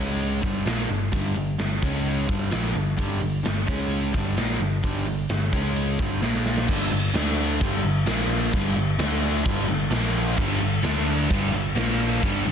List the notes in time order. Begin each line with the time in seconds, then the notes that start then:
Already playing: C#2 C#3 G#3 C#4
0.20 open hi-hat
0.42 G1 G2 D3 G3, kick
0.65 A#1 A#2 F3 A#3, snare, open hi-hat
0.89 G1 G2 D3, open hi-hat
1.12 G1 G2 D3 G3, kick, open hi-hat
1.36 G1 G2 D3, open hi-hat
1.58 G1 G2 D3, snare, open hi-hat
1.82 C#2 C#3 G#3 C#4, kick, open hi-hat
2.06 open hi-hat
2.27 G1 G2 D3 G3, kick, open hi-hat
2.51 A#1 A#2 F3 A#3, snare, open hi-hat
2.74 G1 G2 D3, open hi-hat
2.97 G1 G2 D3 G3, kick, open hi-hat
3.20 G1 G2 D3, open hi-hat
3.43 G1 G2 D3, snare, open hi-hat
3.66 C#2 C#3 G#3 C#4, kick, open hi-hat
3.91 open hi-hat
4.13 G1 G2 D3 G3, kick, open hi-hat
4.37 A#1 A#2 F3 A#3, snare, open hi-hat
4.59 G1 G2 D3, open hi-hat
4.83 G1 G2 D3 G3, kick, open hi-hat
5.06 G1 G2 D3, open hi-hat
5.29 G1 G2 D3, snare, open hi-hat
5.52 C#2 C#3 G#3 C#4, kick, open hi-hat
5.76 open hi-hat
5.99 G1 G2 D3 G3, kick
6.22 A#1 A#2 F3 A#3, snare
6.34 snare
6.46 snare
6.57 snare
6.67 G1 G2 D3 G3, kick, crash
6.91 G1 G2 D3
7.14 D2 D3 A3 D4, snare, crash
7.61 G1 G2 D3 G3, kick, crash
7.84 G1 G2 D3
8.07 A#1 A#2 F3 A#3, snare, crash
8.53 G1 G2 D3 G3, kick, crash
8.76 G1 G2 D3
8.98 D2 D3 A3 D4, snare, crash
9.45 G1 G2 D3 G3, kick, crash
9.68 G1 G2 D3, snare
9.90 A#1 A#2 F3 A#3, snare, crash
10.37 G1 G2 D3 G3, kick, crash
10.60 G1 G2 D3
10.83 D2 D3 A3 D4, snare, crash
11.29 G1 G2 D3 G3, kick, crash
11.52 G1 G2 D3
11.76 A#1 A#2 F3 A#3, snare, crash
12.22 G1 G2 D3 G3, kick, crash
12.46 G1 G2 D3